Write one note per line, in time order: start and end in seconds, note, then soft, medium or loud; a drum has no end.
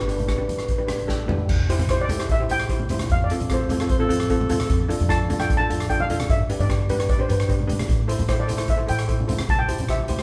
0.00 0.36 G1 medium
0.00 0.07 B4 soft
0.08 0.20 D4 medium
0.08 0.20 G4 medium
0.08 0.20 B4 medium
0.08 0.14 B4 soft
0.08 closed hi-hat medium
0.17 0.22 B4 medium
0.17 closed hi-hat medium
0.17 high conga medium
0.23 0.29 B4 soft
0.28 0.34 D4 medium
0.28 0.34 G4 medium
0.28 0.34 B4 medium
0.28 0.37 B4 soft
0.28 kick medium
0.28 cross-stick medium
0.28 closed hi-hat medium
0.28 low conga medium
0.38 0.62 D4 medium
0.38 0.62 G4 medium
0.38 0.62 B4 medium
0.38 0.46 B4 soft
0.38 high conga medium
0.48 0.73 G2 medium
0.48 0.53 B4 soft
0.48 closed hi-hat medium
0.48 low conga medium
0.57 0.61 B4 soft
0.57 cross-stick medium
0.57 closed hi-hat soft
0.63 0.68 B4 soft
0.68 0.76 B4 soft
0.68 kick medium
0.68 closed hi-hat medium
0.78 1.34 G1 medium
0.78 0.84 D4 medium
0.78 0.85 G4 medium
0.78 0.83 B4 medium
0.78 0.85 B4 medium
0.86 1.00 D4 medium
0.86 1.00 G4 medium
0.86 0.91 B4 soft
0.86 1.01 B4 medium
0.86 cross-stick medium
0.86 closed hi-hat medium
0.86 high conga medium
0.96 0.99 B4 medium
0.96 closed hi-hat medium
1.08 1.20 D4 medium
1.08 1.21 G4 medium
1.08 1.21 A4 medium
1.08 kick medium
1.08 snare medium
1.28 1.47 D4 medium
1.28 1.47 G4 medium
1.28 1.47 B4 medium
1.28 floor tom medium
1.28 high conga medium
1.28 low conga medium
1.49 1.73 C2 medium
1.49 kick loud
1.49 crash loud
1.69 1.81 E4 medium
1.69 1.81 G4 medium
1.69 1.81 C5 loud
1.69 closed hi-hat medium
1.79 2.35 C2 medium
1.79 closed hi-hat medium
1.79 high conga medium
1.89 2.01 E4 medium
1.89 2.02 G4 medium
1.89 2.02 C5 medium
1.89 2.00 C5 medium
1.89 kick medium
1.89 cross-stick medium
1.89 closed hi-hat medium
2.01 2.31 D5 medium
2.09 2.15 E4 medium
2.09 2.15 G4 medium
2.09 2.15 A4 medium
2.09 closed hi-hat medium
2.09 high conga medium
2.09 low conga medium
2.19 2.31 E4 medium
2.19 2.31 G4 medium
2.19 2.31 C5 medium
2.19 cross-stick medium
2.19 closed hi-hat medium
2.29 2.40 E5 loud
2.29 kick loud
2.29 closed hi-hat medium
2.40 2.45 E4 medium
2.40 2.46 G4 medium
2.40 2.46 C5 medium
2.49 2.96 C2 medium
2.49 2.61 E4 medium
2.49 2.62 G4 medium
2.49 2.62 C5 medium
2.49 2.88 G5 loud
2.49 closed hi-hat medium
2.60 cross-stick medium
2.60 closed hi-hat medium
2.69 2.81 E4 medium
2.69 2.82 G4 medium
2.69 2.82 C5 medium
2.69 kick medium
2.69 closed hi-hat medium
2.80 high conga medium
2.89 3.10 E4 medium
2.89 3.10 G4 medium
2.89 3.10 C5 medium
2.89 closed hi-hat medium
2.89 high conga medium
2.89 low conga medium
2.99 cross-stick medium
2.99 closed hi-hat medium
2.99 high conga medium
3.10 3.34 F2 medium
3.10 3.21 F5 loud
3.10 kick loud
3.10 closed hi-hat medium
3.24 3.50 D5 medium
3.30 3.42 C4 medium
3.30 3.42 F4 medium
3.30 3.42 A4 medium
3.30 closed hi-hat medium
3.40 3.95 F2 medium
3.40 closed hi-hat medium
3.40 high conga medium
3.50 3.62 C4 medium
3.50 3.62 F4 medium
3.50 3.62 A4 medium
3.50 kick medium
3.50 cross-stick medium
3.50 closed hi-hat medium
3.54 3.89 C5 medium
3.69 3.76 C4 medium
3.69 3.76 F4 medium
3.69 3.76 A4 medium
3.69 closed hi-hat medium
3.69 high conga medium
3.69 low conga medium
3.80 3.92 C4 medium
3.80 3.92 F4 medium
3.80 3.92 A4 medium
3.80 cross-stick medium
3.80 closed hi-hat medium
3.89 3.99 C5 loud
3.89 kick loud
3.89 closed hi-hat medium
3.99 4.05 C4 medium
3.99 4.05 F4 medium
3.99 4.27 A4 loud
3.99 4.05 A4 medium
4.08 4.57 F2 medium
4.08 4.21 C4 medium
4.08 4.21 F4 medium
4.08 4.21 A4 loud
4.08 closed hi-hat medium
4.20 cross-stick medium
4.20 closed hi-hat medium
4.30 4.42 C4 medium
4.30 4.42 F4 medium
4.30 4.96 A4 medium
4.30 4.42 A4 medium
4.30 kick medium
4.30 closed hi-hat medium
4.41 high conga medium
4.49 4.69 C4 medium
4.49 4.70 F4 medium
4.49 4.70 A4 loud
4.49 closed hi-hat medium
4.49 high conga medium
4.49 low conga medium
4.60 cross-stick loud
4.60 closed hi-hat medium
4.60 high conga medium
4.70 4.93 F2 loud
4.70 kick loud
4.70 closed hi-hat medium
4.89 5.01 D4 medium
4.89 5.01 F4 medium
4.89 5.01 A4 loud
4.89 closed hi-hat medium
5.00 5.55 F2 medium
5.00 closed hi-hat medium
5.00 high conga medium
5.09 5.21 D4 medium
5.09 5.21 F4 medium
5.09 5.21 A4 medium
5.09 5.40 A5 loud
5.09 kick medium
5.09 cross-stick medium
5.09 closed hi-hat medium
5.29 5.35 D4 medium
5.29 5.35 F4 medium
5.29 5.36 A4 medium
5.29 closed hi-hat medium
5.29 high conga medium
5.29 low conga medium
5.40 5.52 D4 medium
5.40 5.52 F4 medium
5.40 5.52 A4 medium
5.40 5.60 G5 loud
5.40 cross-stick medium
5.40 closed hi-hat medium
5.50 kick loud
5.50 closed hi-hat medium
5.57 5.65 D4 medium
5.57 5.65 F4 medium
5.57 5.66 A4 medium
5.57 5.89 A5 loud
5.70 6.17 F2 medium
5.70 5.82 D4 medium
5.70 5.82 F4 medium
5.70 5.82 A4 medium
5.70 closed hi-hat medium
5.80 cross-stick medium
5.80 closed hi-hat medium
5.90 6.02 D4 medium
5.90 6.02 F4 medium
5.90 6.02 A4 medium
5.90 6.00 G5 medium
5.90 kick medium
5.90 closed hi-hat medium
6.00 6.28 F5 loud
6.00 high conga medium
6.10 6.30 D4 medium
6.10 6.30 F4 medium
6.10 6.30 A4 medium
6.10 closed hi-hat medium
6.10 high conga medium
6.20 cross-stick medium
6.20 closed hi-hat medium
6.20 high conga medium
6.30 6.53 G2 medium
6.30 6.61 E5 loud
6.30 kick loud
6.30 closed hi-hat medium
6.50 6.61 D4 medium
6.50 6.62 G4 medium
6.50 6.61 B4 medium
6.50 closed hi-hat medium
6.59 7.15 G2 medium
6.59 6.91 D5 medium
6.59 closed hi-hat medium
6.59 high conga medium
6.69 6.81 D4 medium
6.69 6.82 G4 medium
6.69 6.81 B4 medium
6.69 kick medium
6.69 cross-stick medium
6.69 closed hi-hat medium
6.89 6.95 D4 medium
6.89 6.95 G4 medium
6.89 7.10 B4 medium
6.89 6.96 B4 medium
6.89 closed hi-hat medium
6.89 high conga medium
6.89 low conga medium
6.99 7.11 D4 medium
6.99 7.11 G4 medium
6.99 7.11 B4 medium
6.99 cross-stick medium
6.99 closed hi-hat medium
7.09 7.20 D5 medium
7.09 kick loud
7.09 closed hi-hat medium
7.19 7.25 D4 medium
7.19 7.25 G4 medium
7.19 7.25 B4 medium
7.19 7.30 C5 medium
7.29 7.77 G2 medium
7.29 7.41 D4 medium
7.29 7.41 G4 medium
7.29 7.41 B4 medium
7.29 7.68 B4 medium
7.29 closed hi-hat medium
7.40 cross-stick medium
7.40 closed hi-hat medium
7.48 7.61 D4 medium
7.48 7.61 G4 medium
7.48 7.61 B4 medium
7.48 kick medium
7.48 closed hi-hat medium
7.59 high conga medium
7.67 7.88 D4 medium
7.67 7.88 G4 medium
7.67 7.88 B4 medium
7.67 closed hi-hat medium
7.67 high conga medium
7.67 low conga medium
7.79 cross-stick medium
7.79 closed hi-hat medium
7.79 high conga medium
7.89 8.13 A2 loud
7.89 kick loud
7.89 closed hi-hat medium
8.08 8.21 E4 medium
8.08 8.21 A4 medium
8.08 8.21 C5 loud
8.08 closed hi-hat medium
8.19 8.75 A2 medium
8.19 closed hi-hat medium
8.19 high conga medium
8.28 8.41 E4 medium
8.28 8.41 A4 medium
8.28 8.39 C5 medium
8.28 8.41 C5 medium
8.28 kick medium
8.28 cross-stick medium
8.28 closed hi-hat medium
8.40 8.67 D5 medium
8.47 8.54 E4 medium
8.47 8.54 A4 medium
8.47 8.55 C5 medium
8.47 closed hi-hat medium
8.47 high conga medium
8.57 8.70 E4 medium
8.57 8.70 A4 medium
8.57 8.70 C5 medium
8.57 cross-stick medium
8.57 closed hi-hat medium
8.68 8.90 E5 medium
8.68 kick loud
8.68 closed hi-hat medium
8.77 8.84 E4 medium
8.77 8.84 A4 medium
8.77 8.84 C5 medium
8.87 9.37 A2 medium
8.87 9.00 E4 medium
8.87 9.00 A4 medium
8.87 9.01 C5 medium
8.87 9.26 G5 medium
8.87 closed hi-hat medium
8.99 cross-stick medium
8.99 closed hi-hat medium
9.08 9.21 E4 medium
9.08 9.21 A4 medium
9.08 9.21 C5 medium
9.08 kick medium
9.08 closed hi-hat medium
9.20 high conga medium
9.28 9.48 E4 medium
9.28 9.48 A4 medium
9.28 9.49 C5 medium
9.28 closed hi-hat medium
9.28 high conga medium
9.28 low conga medium
9.39 cross-stick medium
9.39 closed hi-hat medium
9.39 high conga medium
9.49 9.73 C2 loud
9.49 9.60 A5 loud
9.49 kick loud
9.49 closed hi-hat medium
9.59 9.87 G5 loud
9.68 9.81 E4 medium
9.68 9.81 G4 medium
9.68 9.81 C5 medium
9.68 closed hi-hat medium
9.78 10.23 C2 medium
9.78 closed hi-hat medium
9.78 high conga medium
9.89 10.01 E4 medium
9.89 10.01 G4 medium
9.89 10.01 C5 medium
9.89 10.23 E5 medium
9.89 kick medium
9.89 cross-stick medium
9.89 closed hi-hat medium
10.08 10.15 E4 medium
10.08 10.15 G4 medium
10.08 10.15 C5 medium
10.08 closed hi-hat medium
10.08 high conga medium
10.08 low conga medium
10.19 10.23 E4 medium
10.19 10.23 G4 medium
10.19 10.23 C5 medium
10.19 cross-stick medium
10.19 closed hi-hat medium